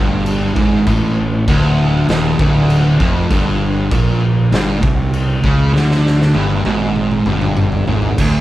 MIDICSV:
0, 0, Header, 1, 4, 480
1, 0, Start_track
1, 0, Tempo, 609756
1, 682, Time_signature, 4, 2, 24, 8
1, 6617, End_track
2, 0, Start_track
2, 0, Title_t, "Distorted electric guitar"
2, 0, Program_c, 0, 30
2, 0, Note_on_c, 0, 43, 115
2, 432, Note_off_c, 0, 43, 0
2, 440, Note_on_c, 0, 44, 111
2, 674, Note_off_c, 0, 44, 0
2, 683, Note_on_c, 0, 45, 100
2, 1155, Note_off_c, 0, 45, 0
2, 1162, Note_on_c, 0, 38, 102
2, 1634, Note_off_c, 0, 38, 0
2, 1646, Note_on_c, 0, 39, 112
2, 1876, Note_off_c, 0, 39, 0
2, 1881, Note_on_c, 0, 38, 116
2, 2353, Note_off_c, 0, 38, 0
2, 2362, Note_on_c, 0, 41, 105
2, 2594, Note_off_c, 0, 41, 0
2, 2602, Note_on_c, 0, 43, 113
2, 3074, Note_off_c, 0, 43, 0
2, 3084, Note_on_c, 0, 46, 110
2, 3555, Note_off_c, 0, 46, 0
2, 3559, Note_on_c, 0, 43, 102
2, 3802, Note_off_c, 0, 43, 0
2, 3802, Note_on_c, 0, 48, 107
2, 4274, Note_off_c, 0, 48, 0
2, 4281, Note_on_c, 0, 49, 111
2, 4513, Note_off_c, 0, 49, 0
2, 4519, Note_on_c, 0, 50, 104
2, 4992, Note_off_c, 0, 50, 0
2, 4997, Note_on_c, 0, 43, 107
2, 5231, Note_off_c, 0, 43, 0
2, 5238, Note_on_c, 0, 44, 103
2, 5712, Note_off_c, 0, 44, 0
2, 5721, Note_on_c, 0, 43, 100
2, 6194, Note_off_c, 0, 43, 0
2, 6205, Note_on_c, 0, 44, 101
2, 6436, Note_off_c, 0, 44, 0
2, 6444, Note_on_c, 0, 38, 112
2, 6617, Note_off_c, 0, 38, 0
2, 6617, End_track
3, 0, Start_track
3, 0, Title_t, "Fingered electric bass"
3, 0, Program_c, 1, 33
3, 0, Note_on_c, 1, 31, 101
3, 409, Note_off_c, 1, 31, 0
3, 442, Note_on_c, 1, 32, 103
3, 665, Note_off_c, 1, 32, 0
3, 683, Note_on_c, 1, 33, 88
3, 1131, Note_off_c, 1, 33, 0
3, 1161, Note_on_c, 1, 26, 92
3, 1609, Note_off_c, 1, 26, 0
3, 1643, Note_on_c, 1, 27, 95
3, 1865, Note_off_c, 1, 27, 0
3, 1886, Note_on_c, 1, 26, 111
3, 2332, Note_off_c, 1, 26, 0
3, 2362, Note_on_c, 1, 29, 86
3, 2585, Note_off_c, 1, 29, 0
3, 2602, Note_on_c, 1, 31, 92
3, 3050, Note_off_c, 1, 31, 0
3, 3081, Note_on_c, 1, 34, 88
3, 3529, Note_off_c, 1, 34, 0
3, 3551, Note_on_c, 1, 31, 98
3, 3778, Note_off_c, 1, 31, 0
3, 3799, Note_on_c, 1, 36, 104
3, 4248, Note_off_c, 1, 36, 0
3, 4280, Note_on_c, 1, 37, 103
3, 4503, Note_off_c, 1, 37, 0
3, 4519, Note_on_c, 1, 38, 89
3, 4968, Note_off_c, 1, 38, 0
3, 5001, Note_on_c, 1, 31, 90
3, 5223, Note_off_c, 1, 31, 0
3, 5240, Note_on_c, 1, 32, 105
3, 5689, Note_off_c, 1, 32, 0
3, 5713, Note_on_c, 1, 31, 102
3, 6166, Note_off_c, 1, 31, 0
3, 6196, Note_on_c, 1, 32, 92
3, 6422, Note_off_c, 1, 32, 0
3, 6439, Note_on_c, 1, 26, 99
3, 6617, Note_off_c, 1, 26, 0
3, 6617, End_track
4, 0, Start_track
4, 0, Title_t, "Drums"
4, 204, Note_on_c, 9, 49, 71
4, 283, Note_off_c, 9, 49, 0
4, 444, Note_on_c, 9, 36, 108
4, 522, Note_off_c, 9, 36, 0
4, 682, Note_on_c, 9, 49, 69
4, 683, Note_on_c, 9, 36, 107
4, 761, Note_off_c, 9, 49, 0
4, 762, Note_off_c, 9, 36, 0
4, 1163, Note_on_c, 9, 49, 67
4, 1164, Note_on_c, 9, 36, 112
4, 1241, Note_off_c, 9, 49, 0
4, 1242, Note_off_c, 9, 36, 0
4, 1642, Note_on_c, 9, 49, 57
4, 1654, Note_on_c, 9, 38, 112
4, 1720, Note_off_c, 9, 49, 0
4, 1733, Note_off_c, 9, 38, 0
4, 1884, Note_on_c, 9, 36, 112
4, 1963, Note_off_c, 9, 36, 0
4, 2126, Note_on_c, 9, 49, 74
4, 2204, Note_off_c, 9, 49, 0
4, 2363, Note_on_c, 9, 36, 111
4, 2441, Note_off_c, 9, 36, 0
4, 2601, Note_on_c, 9, 49, 70
4, 2603, Note_on_c, 9, 36, 103
4, 2680, Note_off_c, 9, 49, 0
4, 2681, Note_off_c, 9, 36, 0
4, 3081, Note_on_c, 9, 49, 68
4, 3082, Note_on_c, 9, 36, 116
4, 3159, Note_off_c, 9, 49, 0
4, 3160, Note_off_c, 9, 36, 0
4, 3561, Note_on_c, 9, 49, 57
4, 3573, Note_on_c, 9, 38, 119
4, 3639, Note_off_c, 9, 49, 0
4, 3652, Note_off_c, 9, 38, 0
4, 3801, Note_on_c, 9, 36, 120
4, 3880, Note_off_c, 9, 36, 0
4, 4042, Note_on_c, 9, 49, 65
4, 4121, Note_off_c, 9, 49, 0
4, 4280, Note_on_c, 9, 36, 104
4, 4359, Note_off_c, 9, 36, 0
4, 4535, Note_on_c, 9, 38, 65
4, 4614, Note_off_c, 9, 38, 0
4, 4652, Note_on_c, 9, 38, 58
4, 4731, Note_off_c, 9, 38, 0
4, 4773, Note_on_c, 9, 38, 62
4, 4852, Note_off_c, 9, 38, 0
4, 4892, Note_on_c, 9, 38, 70
4, 4971, Note_off_c, 9, 38, 0
4, 4997, Note_on_c, 9, 48, 83
4, 5075, Note_off_c, 9, 48, 0
4, 5117, Note_on_c, 9, 48, 71
4, 5195, Note_off_c, 9, 48, 0
4, 5236, Note_on_c, 9, 48, 94
4, 5314, Note_off_c, 9, 48, 0
4, 5357, Note_on_c, 9, 47, 71
4, 5436, Note_off_c, 9, 47, 0
4, 5478, Note_on_c, 9, 47, 83
4, 5557, Note_off_c, 9, 47, 0
4, 5600, Note_on_c, 9, 47, 81
4, 5678, Note_off_c, 9, 47, 0
4, 5714, Note_on_c, 9, 45, 103
4, 5792, Note_off_c, 9, 45, 0
4, 5837, Note_on_c, 9, 45, 97
4, 5916, Note_off_c, 9, 45, 0
4, 5957, Note_on_c, 9, 45, 110
4, 6036, Note_off_c, 9, 45, 0
4, 6078, Note_on_c, 9, 43, 95
4, 6157, Note_off_c, 9, 43, 0
4, 6198, Note_on_c, 9, 43, 104
4, 6277, Note_off_c, 9, 43, 0
4, 6315, Note_on_c, 9, 43, 92
4, 6393, Note_off_c, 9, 43, 0
4, 6440, Note_on_c, 9, 36, 90
4, 6440, Note_on_c, 9, 49, 63
4, 6440, Note_on_c, 9, 57, 117
4, 6519, Note_off_c, 9, 36, 0
4, 6519, Note_off_c, 9, 49, 0
4, 6519, Note_off_c, 9, 57, 0
4, 6617, End_track
0, 0, End_of_file